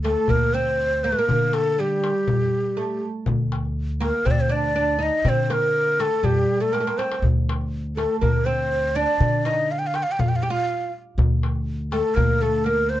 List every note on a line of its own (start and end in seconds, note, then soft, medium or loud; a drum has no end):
0.00 0.14 D2 medium
0.04 0.29 A3 medium
0.04 0.32 A4 medium
0.04 darbuka tek medium
0.17 darbuka ka soft
0.28 1.12 D2 medium
0.28 0.55 A#3 medium
0.28 0.56 A#4 medium
0.28 darbuka dum medium
0.54 1.06 C4 medium
0.54 1.06 C5 medium
0.54 darbuka ka soft
0.67 darbuka ka soft
1.04 1.12 A#3 medium
1.04 1.55 A#4 medium
1.12 1.18 A3 medium
1.19 1.78 A#3 medium
1.29 2.11 D3 medium
1.29 darbuka dum medium
1.53 1.82 A4 medium
1.53 darbuka tek medium
1.66 darbuka ka soft
1.79 2.76 G3 medium
1.79 3.03 G4 medium
2.04 darbuka tek medium
2.15 darbuka ka soft
2.28 2.48 F2 medium
2.28 darbuka dum medium
2.52 darbuka ka soft
2.65 darbuka ka soft
2.77 3.00 A3 medium
3.26 4.09 D2 medium
3.26 darbuka dum medium
3.52 darbuka tek medium
3.65 darbuka ka soft
4.00 4.26 A#3 medium
4.00 4.28 A#4 medium
4.00 darbuka tek medium
4.14 darbuka ka soft
4.25 5.08 D2 medium
4.25 4.49 C4 medium
4.25 4.32 C5 medium
4.25 darbuka dum medium
4.31 4.42 D5 medium
4.40 4.53 C5 medium
4.49 4.74 D4 medium
4.49 5.04 D5 medium
4.49 darbuka ka soft
4.64 darbuka ka soft
4.75 4.98 D4 medium
4.99 5.25 D#4 medium
4.99 5.30 D#5 medium
5.25 6.07 D3 medium
5.25 5.51 C4 medium
5.25 5.54 C5 medium
5.25 darbuka dum medium
5.50 5.99 A#3 medium
5.50 6.02 A#4 medium
5.50 darbuka tek medium
5.63 darbuka ka soft
5.99 6.23 A3 medium
5.99 6.26 A4 medium
5.99 darbuka tek medium
6.12 darbuka ka soft
6.23 6.44 F2 medium
6.23 6.58 G3 medium
6.23 6.63 G4 medium
6.23 darbuka dum medium
6.50 darbuka ka soft
6.60 6.72 A3 medium
6.60 6.75 A4 medium
6.60 darbuka ka soft
6.73 6.79 A#3 medium
6.73 6.99 A#4 medium
6.73 darbuka tek soft
6.80 6.86 A3 medium
6.87 6.99 A#3 medium
6.87 darbuka ka medium
6.98 7.21 C4 medium
6.98 7.23 C5 medium
6.98 darbuka tek medium
7.12 darbuka ka medium
7.22 8.04 D2 medium
7.22 darbuka dum medium
7.49 darbuka tek medium
7.61 darbuka ka soft
7.97 8.21 A3 medium
7.97 8.20 A4 medium
7.97 darbuka tek medium
8.11 darbuka ka soft
8.21 9.04 D2 medium
8.21 8.47 A#3 medium
8.21 8.47 A#4 medium
8.21 darbuka dum medium
8.46 8.95 C4 medium
8.46 8.97 C5 medium
8.59 darbuka ka soft
8.96 9.45 D4 medium
8.96 9.48 D5 medium
9.20 10.02 D3 loud
9.20 darbuka dum medium
9.45 9.69 D#4 medium
9.45 9.73 D#5 medium
9.45 darbuka tek medium
9.58 darbuka ka soft
9.71 9.80 F5 medium
9.79 9.88 G5 medium
9.87 9.97 F5 medium
9.94 10.04 G5 medium
9.94 darbuka tek medium
10.03 10.13 F5 medium
10.07 darbuka ka soft
10.12 10.21 G5 medium
10.19 10.40 F2 medium
10.19 10.30 F5 medium
10.19 darbuka dum medium
10.29 10.37 G5 medium
10.36 10.44 F5 medium
10.43 10.50 G4 medium
10.43 10.52 G5 medium
10.43 darbuka ka soft
10.50 10.90 F4 medium
10.50 10.94 F5 medium
10.56 darbuka ka soft
11.18 12.00 D2 medium
11.18 darbuka dum medium
11.43 darbuka tek medium
11.55 darbuka ka soft
11.92 12.16 A3 medium
11.92 12.16 A4 medium
11.92 darbuka tek medium
12.05 darbuka ka soft
12.15 12.98 D2 medium
12.15 12.42 A#3 medium
12.15 12.43 A#4 medium
12.15 darbuka dum medium
12.41 12.65 A3 medium
12.41 12.66 A4 medium
12.41 darbuka ka soft
12.53 darbuka ka soft
12.65 13.00 A#3 medium
12.65 12.91 A#4 medium
12.89 13.00 C5 medium